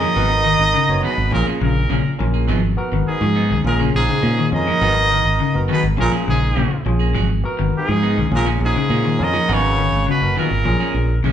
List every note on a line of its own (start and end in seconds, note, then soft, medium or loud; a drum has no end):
0.00 1.03 D#3 loud
0.00 0.23 F3 medium
0.00 0.15 A#3 medium
0.00 0.16 C#4 medium
0.00 0.15 G#4 medium
0.00 1.03 D#5 loud
0.15 0.56 G#1 loud
0.15 0.30 F#3 medium
0.15 0.50 B3 medium
0.15 0.30 B3 medium
0.15 0.31 D#4 medium
0.15 0.50 F#4 medium
0.15 0.30 G#4 medium
0.15 0.51 A#4 medium
0.31 muted clean electric guitar stroke soft
0.44 0.66 D#3 medium
0.59 0.72 G#1 medium
0.59 muted clean electric guitar stroke medium
0.74 0.95 C#3 medium
0.88 1.02 F#1 medium
0.88 1.09 B3 medium
0.88 1.09 F#4 medium
0.88 1.10 C#5 medium
0.88 muted clean electric guitar stroke soft
1.03 1.30 B2 medium
1.03 1.17 F#3 medium
1.03 1.18 B3 medium
1.03 1.18 D#4 medium
1.03 1.17 G#4 medium
1.03 1.30 B4 loud
1.03 muted clean electric guitar stroke medium
1.18 1.31 G#1 medium
1.18 muted clean electric guitar stroke soft
1.31 1.46 A#1 loud
1.31 1.47 A#2 medium
1.31 1.53 F3 medium
1.31 1.73 C#4 medium
1.31 1.73 F4 medium
1.31 1.74 G#4 medium
1.31 1.46 A#4 medium
1.31 muted clean electric guitar stroke soft
1.47 1.59 F3 medium
1.47 1.59 A#3 medium
1.47 1.59 C#4 medium
1.47 1.59 G#4 medium
1.47 muted fingered electric bass stroke soft
1.60 1.88 A#1 loud
1.60 2.17 A#2 medium
1.60 1.82 C#3 medium
1.60 2.16 A#4 medium
1.60 muted clean electric guitar stroke soft
1.90 2.03 A#1 loud
1.90 2.11 C#3 medium
1.90 2.05 F3 medium
1.90 2.05 A#3 medium
1.90 2.04 C#4 medium
1.90 2.04 G#4 medium
2.05 muted clean electric guitar stroke soft
2.05 muted fingered electric bass stroke soft
2.18 2.46 A#1 medium
2.18 2.41 F3 medium
2.18 2.47 C#4 medium
2.18 2.47 F4 medium
2.18 2.47 A#4 medium
2.18 muted clean electric guitar stroke soft
2.34 2.48 A#3 medium
2.34 2.47 G#4 medium
2.48 2.75 G#1 loud
2.48 2.70 F3 medium
2.48 2.63 F#3 medium
2.48 2.62 B3 loud
2.48 2.62 D#4 medium
2.48 2.61 G#4 medium
2.63 muted clean electric guitar stroke medium
2.77 3.19 B3 medium
2.77 3.19 F#4 medium
2.77 3.19 A#4 loud
2.92 3.05 G#1 medium
2.92 3.14 D#3 medium
2.92 muted clean electric guitar stroke soft
3.07 3.61 G#2 medium
3.07 3.62 G#4 loud
3.07 muted fingered electric bass stroke soft
3.21 3.52 G#2 medium
3.21 3.43 F3 medium
3.21 muted clean electric guitar stroke soft
3.35 3.50 F#3 medium
3.35 3.50 B3 medium
3.35 3.50 D#4 medium
3.50 3.63 C#2 medium
3.50 3.72 D#3 medium
3.50 muted clean electric guitar stroke soft
3.64 3.91 A#1 loud
3.64 3.79 A#2 medium
3.64 4.07 C#4 medium
3.64 4.07 F4 medium
3.64 4.08 G#4 medium
3.64 3.80 A#4 medium
3.64 muted clean electric guitar stroke soft
3.79 4.01 C#3 medium
3.79 3.93 F3 medium
3.79 3.93 A#3 medium
3.79 3.93 C#4 medium
3.79 3.93 G#4 medium
3.94 4.08 A#1 medium
3.94 4.49 G#2 medium
3.94 4.49 G#4 loud
3.94 muted clean electric guitar stroke soft
4.09 4.30 C#3 medium
4.22 4.50 A#2 loud
4.22 4.37 F3 medium
4.22 4.37 A#3 medium
4.22 4.37 C#4 medium
4.22 4.36 G#4 medium
4.37 4.59 D#3 medium
4.37 muted clean electric guitar stroke soft
4.52 4.66 F2 loud
4.52 5.67 D#3 loud
4.52 4.66 C#4 medium
4.52 4.66 F4 medium
4.52 4.67 G#4 medium
4.52 5.66 D#5 loud
4.52 muted clean electric guitar stroke soft
4.67 4.88 F3 medium
4.67 4.81 A#3 soft
4.67 4.81 C#4 medium
4.67 muted clean electric guitar stroke medium
4.81 5.22 G#1 loud
4.81 4.96 F#3 medium
4.81 4.95 B3 medium
4.81 5.16 B3 medium
4.81 4.95 D#4 medium
4.81 5.17 F#4 medium
4.81 4.95 G#4 medium
4.81 5.17 A#4 medium
4.96 muted clean electric guitar stroke soft
5.11 5.32 D#3 medium
5.25 5.38 G#1 medium
5.25 muted clean electric guitar stroke soft
5.40 5.61 C#3 medium
5.54 5.68 F#1 medium
5.54 5.75 B3 medium
5.54 5.76 F#4 medium
5.54 5.76 A#4 medium
5.54 muted clean electric guitar stroke soft
5.68 5.90 D#3 medium
5.68 5.83 F#3 medium
5.68 5.82 B3 medium
5.68 5.82 D#4 medium
5.68 5.81 G#4 medium
5.72 5.85 B2 medium
5.72 5.85 B4 medium
5.83 5.97 G#1 medium
5.83 muted clean electric guitar stroke soft
5.96 6.11 A#1 loud
5.96 6.19 F3 medium
5.96 6.40 C#4 medium
5.96 6.40 F4 medium
5.96 6.41 G#4 medium
5.96 6.13 A#4 medium
5.96 muted clean electric guitar stroke soft
6.02 6.14 A#2 medium
6.12 6.25 F3 medium
6.12 6.25 A#3 medium
6.12 6.25 C#4 medium
6.12 6.25 G#4 medium
6.26 6.54 A#1 loud
6.26 6.83 G#2 medium
6.26 6.49 C#3 medium
6.26 6.83 G#4 medium
6.26 muted clean electric guitar stroke soft
6.55 6.70 A#1 loud
6.55 6.78 C#3 medium
6.55 6.71 F3 medium
6.55 6.70 A#3 medium
6.55 6.70 C#4 medium
6.55 6.70 G#4 medium
6.71 muted fingered electric bass stroke soft
6.71 muted clean electric guitar stroke soft
6.86 7.12 A#1 medium
6.86 7.07 F3 medium
6.86 7.13 C#4 medium
6.86 7.14 F4 medium
6.86 7.14 G#4 medium
6.86 muted clean electric guitar stroke soft
6.99 7.15 A#3 medium
6.99 7.14 G#4 medium
7.14 7.42 G#1 loud
7.14 7.36 F3 loud
7.14 7.30 F#3 loud
7.14 7.28 G#4 medium
7.14 muted clean electric guitar stroke loud
7.30 muted clean electric guitar stroke medium
7.43 7.86 B3 loud
7.43 7.86 F#4 medium
7.43 7.86 A#4 loud
7.59 7.72 G#1 medium
7.59 7.80 D#3 medium
7.59 muted clean electric guitar stroke soft
7.74 8.29 G#2 medium
7.74 8.30 G#4 loud
7.74 muted fingered electric bass stroke soft
7.88 8.19 G#2 loud
7.88 8.10 F3 medium
7.88 muted clean electric guitar stroke soft
8.02 8.17 B3 medium
8.02 8.18 D#4 medium
8.02 8.16 G#4 medium
8.17 8.31 C#2 medium
8.17 8.39 D#3 medium
8.17 muted clean electric guitar stroke soft
8.31 8.58 A#1 loud
8.31 8.47 A#2 medium
8.31 8.73 C#4 medium
8.31 8.73 F4 medium
8.31 8.74 G#4 medium
8.31 muted clean electric guitar stroke soft
8.36 8.48 A#4 loud
8.46 8.59 F3 medium
8.46 8.59 A#3 medium
8.46 8.59 C#4 medium
8.46 8.60 G#4 medium
8.46 muted clean electric guitar stroke medium
8.60 8.74 A#1 medium
8.60 muted clean electric guitar stroke soft
8.65 9.24 G#2 medium
8.65 9.25 G#4 loud
8.76 8.97 C#3 medium
8.89 9.17 A#2 loud
8.89 9.04 F3 medium
8.89 9.05 A#3 medium
8.89 9.04 C#4 medium
8.89 9.04 G#4 medium
9.05 9.26 D#3 medium
9.05 muted clean electric guitar stroke soft
9.19 9.33 F2 loud
9.19 9.52 D#3 loud
9.19 9.33 C#4 medium
9.19 9.33 F4 medium
9.19 9.34 A#4 loud
9.19 muted clean electric guitar stroke soft
9.24 9.55 D#5 loud
9.33 9.55 F3 medium
9.33 9.48 A#3 soft
9.33 9.48 C#4 medium
9.33 9.48 G#4 medium
9.48 9.89 G#1 loud
9.48 10.07 C#3 medium
9.48 9.63 F#3 medium
9.48 9.83 B3 medium
9.48 9.63 B3 medium
9.48 9.63 D#4 medium
9.48 9.84 F#4 medium
9.48 9.62 G#4 medium
9.48 9.84 A#4 medium
9.53 10.09 C#5 loud
9.63 muted clean electric guitar stroke soft
9.78 9.99 D#3 medium
9.92 10.06 G#1 medium
9.92 muted clean electric guitar stroke soft
10.07 10.35 B2 medium
10.07 10.28 C#3 medium
10.07 10.36 B4 loud
10.21 10.35 F#1 medium
10.21 10.42 B3 medium
10.21 10.42 F#4 medium
10.21 10.43 A#4 medium
10.21 muted clean electric guitar stroke soft
10.36 11.20 A#2 medium
10.36 10.58 D#3 medium
10.36 10.51 F#3 medium
10.36 10.50 B3 medium
10.36 10.50 D#4 medium
10.36 10.50 G#4 medium
10.36 11.21 A#4 loud
10.51 10.64 G#1 medium
10.51 muted clean electric guitar stroke soft
10.64 10.79 A#1 loud
10.64 10.86 F3 medium
10.64 11.07 C#4 medium
10.64 11.07 F4 medium
10.64 11.08 G#4 medium
10.64 muted clean electric guitar stroke soft
10.80 10.94 F3 medium
10.80 10.94 A#3 medium
10.80 10.95 C#4 medium
10.80 10.94 G#4 medium
10.80 muted fingered electric bass stroke soft
10.94 11.21 A#1 medium
10.94 muted clean electric guitar stroke soft
11.24 11.32 A#1 loud
11.24 11.32 C#3 medium
11.24 11.32 F3 medium
11.24 11.32 A#3 medium
11.24 11.32 C#4 medium
11.24 11.32 G#4 medium